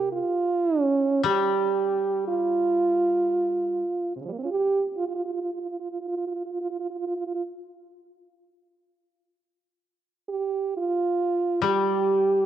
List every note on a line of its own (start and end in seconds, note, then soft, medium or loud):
0.00 0.19 C3 medium
0.13 0.86 F4 medium
0.86 1.20 C#4 medium
1.24 3.80 G3 medium
1.24 2.24 G4 medium
2.27 4.13 F4 medium
4.16 4.21 C3 soft
4.21 4.25 C#3 soft
4.21 4.28 F3 soft
4.29 4.32 G3 soft
4.29 4.38 A#3 soft
4.39 4.42 C4 soft
4.43 4.45 C#4 soft
4.43 4.50 F4 medium
4.51 4.85 G4 medium
4.98 5.06 F4 medium
5.08 5.15 F4 soft
5.15 5.23 F4 medium
5.25 5.33 F4 soft
5.33 5.41 F4 soft
5.42 5.50 F4 soft
5.54 5.60 F4 soft
5.61 5.69 F4 soft
5.69 5.78 F4 soft
5.80 5.88 F4 soft
5.92 5.98 F4 soft
6.01 6.07 F4 soft
6.08 6.16 F4 medium
6.17 6.25 F4 soft
6.27 6.34 F4 medium
6.34 6.42 F4 soft
6.46 6.51 F4 soft
6.51 6.60 F4 soft
6.61 6.69 F4 medium
6.70 6.78 F4 soft
6.80 6.87 F4 soft
6.90 6.97 F4 soft
6.99 7.06 F4 soft
7.07 7.15 F4 soft
7.16 7.24 F4 medium
7.27 7.34 F4 soft
7.34 7.42 F4 medium
10.29 10.73 G4 medium
10.77 11.60 F4 medium
11.62 12.46 G3 soft
11.62 12.46 G4 medium